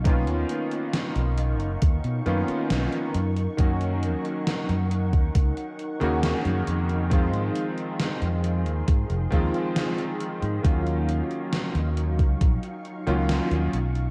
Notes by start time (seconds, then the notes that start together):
Already playing: B1 D#4 A#4 F5 C#6
0.04 D#3 A#3 B3 C#4 F4, kick, closed hi-hat
0.27 D#2, closed hi-hat
0.49 closed hi-hat
0.71 closed hi-hat
0.93 snare, closed hi-hat
1.16 B1, closed hi-hat
1.38 closed hi-hat
1.60 F#1, closed hi-hat
1.82 D#2, kick, closed hi-hat
2.04 B2, closed hi-hat
2.26 F#2 D#3 A#3 B3 C#4 F4, closed hi-hat
2.48 muted fingered electric bass stroke, closed hi-hat
2.70 B1, snare, closed hi-hat
2.92 closed hi-hat
3.14 F#2 F#5, closed hi-hat
3.36 closed hi-hat
3.57 F#2 D#3 F#3 A#3 C#4 F#4, kick, closed hi-hat
3.81 closed hi-hat
4.03 closed hi-hat
4.25 closed hi-hat
4.47 snare, closed hi-hat
4.69 F#2, closed hi-hat
4.91 closed hi-hat
5.13 D#2, kick, closed hi-hat
5.35 C#2, kick, closed hi-hat
5.57 closed hi-hat
5.79 closed hi-hat
6.00 D#2 C#3 D#3 A#3 C#4 F#4, closed hi-hat
6.23 snare, closed hi-hat
6.45 F#2, closed hi-hat
6.67 F2, closed hi-hat
6.89 closed hi-hat
7.10 D#3 F3 G#3 C4 F4 G#4 F5 C6, kick, closed hi-hat
7.34 G#2, closed hi-hat
7.56 closed hi-hat
7.78 closed hi-hat
8.00 snare, closed hi-hat
8.22 F2, closed hi-hat
8.44 closed hi-hat
8.66 D#2, closed hi-hat
8.88 G#2 D#5, kick, closed hi-hat
9.10 F1, closed hi-hat
9.30 D#2 D#3 F3 G#3 C4 F4, kick, closed hi-hat
9.54 closed hi-hat
9.76 snare, closed hi-hat
9.98 closed hi-hat
10.20 closed hi-hat
10.42 G#2, closed hi-hat
10.63 D#2 D#3 F#3 A#3 C#4 D#4 F4 F5 C#6, kick, closed hi-hat
10.87 closed hi-hat
11.09 closed hi-hat
11.31 closed hi-hat
11.53 snare, closed hi-hat
11.75 D#2, closed hi-hat
11.97 closed hi-hat
12.19 C#2, kick, closed hi-hat
12.41 A#1, kick, closed hi-hat
12.63 closed hi-hat
12.85 closed hi-hat
13.07 C#2 D#3 F#3 A#3 C#4 F4, closed hi-hat
13.29 snare, closed hi-hat
13.51 D#2, closed hi-hat
13.73 B1 A#4, closed hi-hat
13.95 closed hi-hat